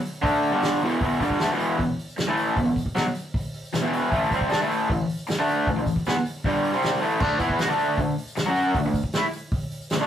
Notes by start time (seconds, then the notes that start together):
0.05 open hi-hat
0.22 D3 A3 D4, kick, open hi-hat
0.43 open hi-hat
0.51 G2 D3 G3
0.62 snare, open hi-hat, tambourine
0.81 E2 B2 E3, open hi-hat
1.01 E2 B2 E3, kick, open hi-hat
1.12 tambourine
1.20 G2 D3 G3, kick, open hi-hat, tambourine
1.30 kick
1.39 D3 A3, snare, open hi-hat, tambourine
1.51 E2 B2 E3
1.59 open hi-hat, tambourine
1.78 E2 B2, kick, open hi-hat
1.99 open hi-hat, tambourine
2.09 tambourine
2.18 muted overdriven electric guitar stroke, snare, open hi-hat, tambourine
2.27 A2 E3 A3
2.37 open hi-hat, tambourine
2.57 E2 B2, kick, open hi-hat
2.65 E2 B2
2.70 tambourine
2.76 kick, open hi-hat, tambourine
2.86 kick
2.95 B2 F#3, snare, open hi-hat, tambourine
3.14 open hi-hat, tambourine
3.34 kick, open hi-hat
3.54 open hi-hat, tambourine
3.65 tambourine
3.73 E2 B2, snare, open hi-hat, tambourine
3.81 E2 B2 E3
3.93 open hi-hat, tambourine
4.11 A2 E3 A3, kick, open hi-hat
4.22 tambourine
4.31 C3 G3 C4, kick, open hi-hat, tambourine
4.41 kick
4.49 G3 D4, snare, open hi-hat, tambourine
4.61 A2 E3 A3
4.69 open hi-hat, tambourine
4.89 A2 E3, kick, open hi-hat
5.08 open hi-hat, tambourine
5.17 tambourine
5.27 muted overdriven electric guitar stroke, snare, open hi-hat, tambourine
5.39 D3 A3 D4
5.48 open hi-hat, tambourine
5.67 A2 E3, kick, open hi-hat, tambourine
5.76 A2 E3, tambourine
5.86 kick, open hi-hat, tambourine
5.96 kick
6.05 E3 B3, snare, open hi-hat, tambourine
6.25 open hi-hat, tambourine
6.44 G2 D3 G3, kick, open hi-hat, tambourine
6.64 open hi-hat
6.72 C3 G3 C4, tambourine
6.82 snare, open hi-hat, tambourine
6.93 tambourine
7.01 A2 E3 A3, open hi-hat, tambourine
7.12 tambourine
7.20 D3 A3 D4, kick, crash
7.31 tambourine
7.39 E3 B3 E4, kick, open hi-hat, tambourine
7.49 kick
7.59 B3 F#4, snare, open hi-hat, tambourine
7.68 D3 A3 D4
7.79 open hi-hat, tambourine
7.97 D3 A3, kick, open hi-hat
8.18 open hi-hat, tambourine
8.27 tambourine
8.36 muted overdriven electric guitar stroke, snare, open hi-hat, tambourine
8.46 F#3 C#4 F#4
8.55 open hi-hat, tambourine
8.74 D3 A3, kick, open hi-hat
8.84 D3 A3, tambourine
8.94 kick, open hi-hat, tambourine
9.04 kick
9.13 A3, snare, open hi-hat, tambourine
9.17 E4
9.33 open hi-hat, tambourine
9.51 kick, open hi-hat
9.71 open hi-hat, tambourine
9.82 tambourine
9.90 D3, snare, open hi-hat, tambourine
9.94 A3
10.00 D3 A3 D4